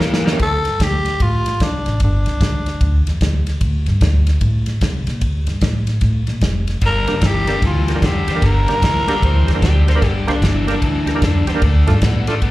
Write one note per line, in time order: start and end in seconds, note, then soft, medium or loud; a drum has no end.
0.00 0.32 E2 medium
0.00 0.23 A2 medium
0.00 0.23 E3 medium
0.00 0.38 A#3 medium
0.00 snare medium
0.14 snare loud
0.24 0.39 A2 medium
0.24 0.39 E3 medium
0.24 0.29 G4 medium
0.24 0.29 A#4 medium
0.24 snare loud
0.32 0.40 C#4 medium
0.32 0.40 E4 medium
0.32 0.40 G4 medium
0.32 0.40 A#4 medium
0.39 0.61 D2 loud
0.39 0.85 A4 loud
0.39 kick medium
0.39 ride medium
0.65 0.77 G2 medium
0.65 snare soft
0.65 ride medium
0.80 1.13 D2 medium
0.80 1.23 G4 loud
0.80 kick medium
0.80 snare loud
0.80 ride medium
1.06 snare soft
1.06 ride medium
1.20 1.53 A2 medium
1.20 1.65 F4 medium
1.20 kick medium
1.20 ride medium
1.46 snare soft
1.46 ride medium
1.60 1.81 C3 medium
1.60 2.02 D4 medium
1.60 kick medium
1.60 snare loud
1.60 ride medium
1.86 1.98 A1 medium
1.86 snare soft
1.86 ride medium
2.00 2.22 G1 loud
2.00 3.19 D4 medium
2.00 kick medium
2.00 ride medium
2.26 2.38 C2 medium
2.26 snare soft
2.26 ride medium
2.41 2.74 D2 medium
2.41 kick medium
2.41 snare loud
2.41 ride medium
2.66 snare soft
2.66 ride medium
2.81 3.02 D2 medium
2.81 kick medium
2.81 ride medium
3.07 3.19 E2 medium
3.07 snare soft
3.07 ride medium
3.21 3.54 D2 medium
3.21 kick medium
3.21 snare loud
3.21 ride medium
3.47 snare soft
3.47 ride medium
3.61 3.82 D2 medium
3.61 kick medium
3.61 ride medium
3.86 3.99 G2 medium
3.86 snare soft
3.86 ride medium
4.01 4.34 D2 loud
4.01 kick medium
4.01 snare loud
4.01 ride medium
4.27 snare soft
4.27 ride medium
4.41 4.74 A2 medium
4.41 kick medium
4.41 ride medium
4.66 snare soft
4.66 ride medium
4.81 5.02 C3 medium
4.81 kick medium
4.81 snare loud
4.81 ride medium
5.07 5.19 A#2 medium
5.07 snare soft
5.07 ride medium
5.21 5.43 D2 medium
5.21 kick medium
5.21 ride medium
5.47 5.59 G2 medium
5.47 snare soft
5.47 ride medium
5.61 5.95 A2 medium
5.61 kick medium
5.61 snare loud
5.61 ride medium
5.87 snare soft
5.87 ride medium
6.01 6.23 A2 medium
6.01 kick medium
6.01 snare soft
6.01 ride medium
6.27 6.40 A#2 medium
6.27 snare soft
6.27 ride medium
6.41 6.75 F1 medium
6.41 kick medium
6.41 snare loud
6.41 ride medium
6.67 snare soft
6.67 ride medium
6.81 7.03 G1 medium
6.81 7.19 G2 medium
6.81 7.20 D3 medium
6.81 kick medium
6.81 ride medium
6.86 7.28 A#4 loud
7.07 7.20 C2 medium
7.07 7.15 A#3 medium
7.07 7.15 D4 medium
7.07 7.15 G4 medium
7.07 7.15 A#4 medium
7.07 snare soft
7.07 ride medium
7.21 7.55 G1 medium
7.21 7.45 G2 medium
7.21 7.45 E3 medium
7.21 kick medium
7.21 snare loud
7.21 ride medium
7.26 7.64 G4 loud
7.47 7.61 G2 medium
7.47 7.61 D3 medium
7.47 7.55 A#3 medium
7.47 7.55 D4 medium
7.47 7.55 G4 medium
7.47 7.55 A#4 medium
7.47 snare soft
7.47 ride medium
7.62 7.95 D2 loud
7.62 7.99 G2 medium
7.62 8.00 E3 medium
7.62 kick medium
7.62 snare soft
7.62 ride medium
7.66 8.07 F4 medium
7.88 7.91 G4 medium
7.88 7.92 A#4 medium
7.88 snare soft
7.88 ride medium
7.95 8.02 A#3 medium
7.95 8.03 D4 medium
7.95 8.03 G4 medium
7.95 8.03 A#4 medium
8.02 8.23 F2 medium
8.02 8.25 G2 medium
8.02 8.25 D3 medium
8.02 8.47 G4 medium
8.02 kick medium
8.02 snare loud
8.02 ride medium
8.27 8.39 E2 medium
8.27 8.41 G2 medium
8.27 8.41 D3 medium
8.27 8.31 G4 medium
8.27 8.32 C5 medium
8.27 snare soft
8.27 ride medium
8.35 8.42 A#3 medium
8.35 8.42 D4 medium
8.35 8.43 G4 medium
8.35 8.43 A#4 medium
8.42 8.63 G1 medium
8.42 8.79 G2 medium
8.42 8.79 D3 medium
8.42 9.64 A#4 loud
8.42 kick medium
8.42 snare soft
8.42 ride medium
8.67 8.79 C2 medium
8.67 8.75 A#3 medium
8.67 8.75 D4 medium
8.67 8.76 G4 medium
8.67 8.76 A#4 medium
8.67 snare soft
8.67 ride medium
8.82 9.15 D2 medium
8.82 9.05 G2 medium
8.82 9.06 E3 medium
8.82 kick medium
8.82 snare loud
8.82 ride medium
9.07 9.21 G2 medium
9.07 9.21 D3 medium
9.07 9.15 A#3 medium
9.07 9.15 D4 medium
9.07 9.15 G4 medium
9.07 9.23 G4 medium
9.07 9.16 A#4 medium
9.07 snare soft
9.07 ride medium
9.22 9.43 D2 medium
9.22 9.59 G2 medium
9.22 9.60 E3 medium
9.22 9.62 C5 medium
9.22 kick medium
9.22 ride medium
9.47 9.60 E2 medium
9.47 9.51 G4 medium
9.47 9.52 A#4 medium
9.47 snare soft
9.47 ride medium
9.54 9.62 A#3 medium
9.54 9.62 D4 medium
9.54 9.62 G4 medium
9.54 9.63 A#4 medium
9.62 9.95 D2 medium
9.62 9.85 G2 medium
9.62 9.85 D3 medium
9.62 9.87 G4 medium
9.62 kick medium
9.62 snare loud
9.62 ride medium
9.88 10.01 G2 medium
9.88 10.01 D3 medium
9.88 9.91 G4 medium
9.88 9.92 A#4 medium
9.88 10.04 C5 medium
9.88 snare soft
9.88 ride medium
9.95 10.02 A#3 medium
9.95 10.02 D4 medium
9.95 10.03 G4 medium
9.95 10.03 A#4 medium
10.02 10.23 G1 medium
10.02 10.39 G2 medium
10.02 10.39 D3 medium
10.02 10.28 G4 medium
10.02 kick medium
10.02 snare soft
10.02 ride medium
10.27 10.39 C2 medium
10.27 10.35 A#3 medium
10.27 10.35 D4 medium
10.27 11.45 D4 medium
10.27 10.35 G4 medium
10.27 10.36 C5 medium
10.27 snare soft
10.27 ride medium
10.42 10.75 G1 medium
10.42 10.65 G2 medium
10.42 10.66 E3 medium
10.42 kick medium
10.42 snare loud
10.42 ride medium
10.67 10.81 G2 medium
10.67 10.81 D3 medium
10.67 10.75 A#3 medium
10.67 10.75 D4 medium
10.67 10.75 G4 medium
10.67 10.75 A#4 medium
10.67 snare soft
10.67 ride medium
10.82 11.15 D2 medium
10.82 11.19 G2 medium
10.82 11.20 E3 medium
10.82 kick medium
10.82 ride medium
11.07 11.11 G4 medium
11.07 11.12 A#4 loud
11.07 snare soft
11.07 ride medium
11.15 11.22 A#3 medium
11.15 11.22 D4 medium
11.15 11.23 G4 medium
11.15 11.23 A#4 medium
11.22 11.43 F2 medium
11.22 11.45 G2 medium
11.22 11.45 D3 medium
11.22 kick medium
11.22 snare loud
11.22 ride medium
11.47 11.59 E2 medium
11.47 11.61 G2 medium
11.47 11.61 D3 medium
11.47 11.51 G4 medium
11.47 11.52 C5 medium
11.47 snare soft
11.47 ride medium
11.54 11.62 A#3 medium
11.54 11.62 D4 medium
11.54 11.62 G4 medium
11.54 11.63 A#4 medium
11.62 11.83 D2 loud
11.62 11.99 D3 medium
11.62 11.99 A3 medium
11.62 kick medium
11.62 ride medium
11.87 11.99 G2 medium
11.87 11.94 A3 medium
11.87 11.95 D4 medium
11.87 11.95 F4 medium
11.87 11.95 A4 medium
11.87 snare soft
11.87 ride medium
12.02 12.34 A2 medium
12.02 12.25 D3 medium
12.02 12.25 B3 medium
12.02 kick medium
12.02 snare loud
12.02 ride medium
12.27 12.41 D3 medium
12.27 12.35 A3 medium
12.27 12.41 A3 medium
12.27 12.35 D4 medium
12.27 12.35 F4 medium
12.27 12.35 A4 medium
12.27 snare soft
12.27 ride medium
12.42 12.51 A2 medium
12.42 12.51 D3 medium
12.42 12.51 B3 medium
12.42 kick medium
12.42 ride medium